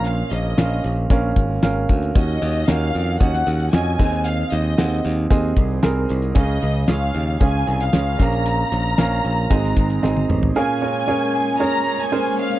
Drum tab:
HH |x-x-x-x-x-x-x-xx|x-x-x-x-x-xxx-xx|x-x-x-x-x-x-x-xx|x-x-x-x-x-xxx-xx|
SD |----o-------o---|----o----o--o---|----o-------o---|----o-------o---|
T1 |----------------|----------------|----------------|----------------|
T2 |----------------|----------------|----------------|----------------|
FT |----------------|----------------|----------------|----------------|
BD |--------o-o---o-|o-------o-----o-|--------o-o-----|o-------o-----o-|

HH |x-x-x-x-x-xx----|----------------|
SD |----o----o--o---|----------------|
T1 |-------------o--|----------------|
T2 |--------------o-|----------------|
FT |---------------o|----------------|
BD |--------o-o-----|----------------|